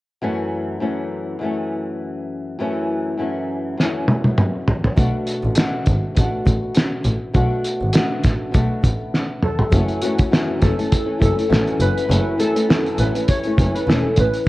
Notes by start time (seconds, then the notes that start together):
0.21 F#2 E3 A3 C#4
0.80 F#2 E3 A3 C#4
1.39 F#2 E3 A3
1.45 C#4
2.59 F#2 E3 A3 C#4
3.18 F#2 E3 A3 C#4
3.78 F#2 E3 A3, snare
3.83 C#4
4.08 high tom
4.25 high tom
4.38 mid tom
4.68 floor tom
4.84 floor tom
4.96 B1 B2 A3 D4 F#4, kick, closed hi-hat
5.27 closed hi-hat
5.44 A1
5.55 B2 A3 D4 F#4, snare, closed hi-hat
5.86 G#1, kick, closed hi-hat
6.15 A1 B2 A3, kick, closed hi-hat
6.19 D4 F#4
6.46 A1, kick, closed hi-hat
6.74 snare, closed hi-hat
7.04 A1, closed hi-hat
7.34 B1 B2 A3 D4 F#4, kick, closed hi-hat
7.64 closed hi-hat
7.81 G#1
7.93 B2 A3 D4 F#4, snare, closed hi-hat
8.23 A1, kick, snare, closed hi-hat
8.51 B1 B2 A3 D4, kick, closed hi-hat
8.57 F#4
8.84 A1, kick, closed hi-hat
9.14 snare
9.43 A4, mid tom
9.59 floor tom
9.72 F#1 F#2 E3 A3 C#4, kick, closed hi-hat
9.88 closed hi-hat
10.02 F#2 E3 A3 C#4 F#4, closed hi-hat
10.18 E3 A3 C#4, kick, closed hi-hat
10.31 F#2 E3 A3 C#4, snare
10.60 F#1 F#2 E3 A3 C#4 A4, kick, snare, closed hi-hat
10.77 E3 A3 C#4, closed hi-hat
10.92 kick, closed hi-hat
11.05 E3 A3 C#4
11.19 F#1 F#2 E3 A3 C#4 A4, kick, closed hi-hat
11.36 E3 A3 C#4, closed hi-hat
11.48 A1 F#2 E3 A3 C#4
11.52 snare
11.67 closed hi-hat
11.80 F#1 B4, closed hi-hat
11.98 closed hi-hat
12.08 F#1 F#2 E3 A3 C#4, closed hi-hat
12.38 F#2 E3 A3 C#4 A4, closed hi-hat
12.55 E3 A3 C#4, closed hi-hat
12.69 F#2 E3 A3 C#4, snare
12.86 closed hi-hat
12.98 A1 F#2 E3 A3 C#4 B4, closed hi-hat
13.15 E3 A3 C#4, closed hi-hat
13.28 C#5, kick, closed hi-hat
13.44 E3 A3 C#4, closed hi-hat
13.58 F#1 F#2 E3 A3 C#4, kick, closed hi-hat
13.74 E3 A3 C#4 B4, closed hi-hat
13.87 E1 F#2 E3 A3 C#4 A4, snare
14.04 E3 A3 C#4
14.16 A1 B4, kick, closed hi-hat
14.34 closed hi-hat